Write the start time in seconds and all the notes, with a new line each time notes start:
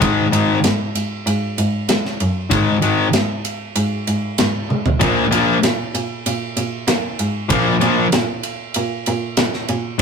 0.00 G#2 D#3 G#3, kick, ride
0.32 G#2 D#3 G#3, ride
0.64 G#2, snare, ride
0.95 G#2, ride
1.27 G#2, ride
1.58 G#2, ride
1.88 G#3, snare, ride
2.05 snare
2.20 F#2, ride
2.50 G#2 D#3 G#3, kick, ride
2.82 G#2 D#3 G#3, ride
3.13 G#2, snare, ride
3.45 ride
3.76 G#2, ride
4.07 G#2, ride
4.38 G#2, snare, ride
4.69 G#3, high tom
4.86 floor tom
5.00 A#2 F3 A#3, kick, ride
5.31 A#2 F3 A#3, ride
5.63 A#2, snare, ride
5.95 A#2, ride
6.26 A#2, ride
6.57 A#2, ride
6.88 A#3, snare, ride
7.19 G#2, ride
7.49 A#2 F3 A#3, kick, ride
7.80 A#2 F3 A#3, ride
8.12 A#2, snare, ride
8.43 ride
8.74 A#2, ride
9.06 A#2, ride
9.37 A#2, snare, ride
9.54 snare
9.68 A#2, ride
9.99 G#2